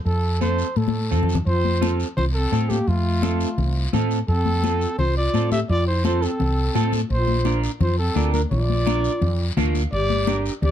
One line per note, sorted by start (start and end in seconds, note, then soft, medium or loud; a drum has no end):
0.05 0.62 F2 medium
0.05 0.39 A4 medium
0.05 high conga soft
0.05 long guiro medium
0.41 0.66 C4 medium
0.41 0.66 F4 medium
0.41 0.66 A4 medium
0.41 0.79 C5 medium
0.41 high conga medium
0.41 short guiro medium
0.59 short guiro medium
0.76 1.13 A2 loud
0.76 1.30 A4 medium
0.76 high conga medium
0.76 long guiro medium
0.88 high conga medium
1.11 1.40 F2 medium
1.11 1.36 C4 medium
1.11 1.36 F4 medium
1.11 1.36 A4 medium
1.11 short guiro medium
1.23 low conga medium
1.29 short guiro medium
1.35 low conga loud
1.46 2.03 F2 loud
1.46 1.96 F4 medium
1.46 1.96 C5 loud
1.46 high conga soft
1.46 long guiro medium
1.65 high conga medium
1.81 2.06 C4 medium
1.81 2.06 F4 medium
1.81 2.07 A4 medium
1.81 high conga medium
1.81 short guiro medium
2.00 short guiro medium
2.17 2.45 C2 medium
2.17 2.25 F4 medium
2.17 2.25 C5 loud
2.17 high conga soft
2.17 low conga medium
2.17 long guiro medium
2.34 2.71 C4 medium
2.34 2.71 A4 loud
2.52 2.80 A2 medium
2.52 2.77 C4 medium
2.52 2.77 F4 medium
2.52 2.77 A4 medium
2.52 high conga medium
2.52 short guiro medium
2.69 2.89 A#3 medium
2.69 2.89 G4 medium
2.69 high conga medium
2.69 short guiro medium
2.87 3.44 F2 loud
2.87 3.93 A3 medium
2.87 3.94 F4 medium
2.87 high conga soft
2.87 long guiro medium
3.22 3.47 C4 medium
3.22 3.48 F4 medium
3.22 3.48 A4 medium
3.22 high conga loud
3.22 short guiro medium
3.40 short guiro medium
3.58 3.86 C2 loud
3.58 high conga soft
3.58 low conga medium
3.58 long guiro medium
3.93 4.21 A2 medium
3.93 4.18 C4 medium
3.93 4.18 F4 medium
3.93 4.18 A4 medium
3.93 high conga medium
3.93 low conga medium
3.93 short guiro medium
4.11 short guiro medium
4.27 4.85 F2 loud
4.27 4.95 C4 medium
4.27 4.95 A4 loud
4.27 high conga soft
4.27 long guiro medium
4.46 high conga medium
4.63 4.88 C4 medium
4.63 4.89 F4 medium
4.63 4.89 A4 medium
4.63 high conga loud
4.63 short guiro medium
4.81 short guiro medium
4.98 5.27 C2 medium
4.98 5.15 F4 medium
4.98 5.15 C5 loud
4.98 high conga soft
4.98 low conga medium
4.98 long guiro medium
5.17 5.50 F4 medium
5.17 5.50 D5 loud
5.34 5.62 A2 medium
5.34 5.59 C4 medium
5.34 5.59 F4 medium
5.34 5.59 A4 medium
5.34 high conga medium
5.34 short guiro medium
5.52 5.60 G4 medium
5.52 5.60 E5 loud
5.52 high conga medium
5.52 short guiro medium
5.69 6.26 F2 loud
5.69 5.86 F4 loud
5.69 5.86 D5 loud
5.69 high conga soft
5.69 long guiro medium
5.87 6.04 E4 medium
5.87 6.04 C5 loud
6.04 6.29 C4 medium
6.04 6.29 F4 medium
6.04 6.24 F4 medium
6.04 6.30 A4 medium
6.04 6.24 C5 loud
6.04 high conga medium
6.04 short guiro medium
6.22 6.93 C4 medium
6.22 6.93 A4 medium
6.22 short guiro medium
6.40 6.68 C2 medium
6.40 high conga soft
6.40 low conga medium
6.40 long guiro medium
6.75 7.03 A2 medium
6.75 7.00 C4 medium
6.75 7.00 F4 medium
6.75 7.00 A4 medium
6.75 high conga medium
6.75 short guiro medium
6.93 high conga medium
6.93 short guiro medium
7.10 7.67 A#1 loud
7.10 7.59 F4 medium
7.10 7.60 C5 loud
7.10 high conga soft
7.10 long guiro medium
7.28 high conga medium
7.45 7.70 D4 medium
7.45 7.70 F4 medium
7.45 7.70 A#4 medium
7.45 high conga medium
7.45 short guiro medium
7.63 short guiro medium
7.81 8.09 F2 medium
7.81 7.97 F4 medium
7.81 7.97 C5 loud
7.81 high conga soft
7.81 low conga medium
7.81 long guiro medium
7.98 8.32 C4 medium
7.98 8.31 A4 medium
8.15 8.44 D2 medium
8.15 8.40 D4 medium
8.15 8.41 F4 medium
8.15 8.41 A#4 medium
8.15 high conga medium
8.15 short guiro medium
8.33 8.42 D4 medium
8.33 8.41 A#4 medium
8.33 high conga medium
8.33 short guiro medium
8.51 9.07 A#1 loud
8.51 9.53 F4 medium
8.51 9.53 D5 loud
8.51 high conga soft
8.51 low conga medium
8.51 long guiro medium
8.70 high conga medium
8.86 9.11 D4 medium
8.86 9.11 F4 medium
8.86 9.11 A#4 medium
8.86 high conga medium
8.86 short guiro medium
9.04 short guiro medium
9.21 9.50 F2 medium
9.21 high conga soft
9.21 low conga medium
9.21 long guiro medium
9.57 9.85 D2 medium
9.57 9.81 D4 medium
9.57 9.82 F4 medium
9.57 9.82 A#4 loud
9.57 9.90 F5 medium
9.57 high conga medium
9.57 low conga medium
9.57 short guiro medium
9.75 high conga medium
9.75 short guiro medium
9.92 10.48 G1 loud
9.92 10.41 G4 medium
9.92 10.42 D5 loud
9.92 high conga soft
9.92 long guiro medium
10.10 high conga medium
10.27 10.52 D4 medium
10.27 10.52 G4 medium
10.27 10.52 A#4 medium
10.27 high conga medium
10.27 short guiro medium
10.46 short guiro medium
10.62 10.71 D2 medium
10.62 10.71 G4 medium
10.62 10.71 D5 loud
10.62 high conga soft
10.62 low conga medium
10.62 long guiro medium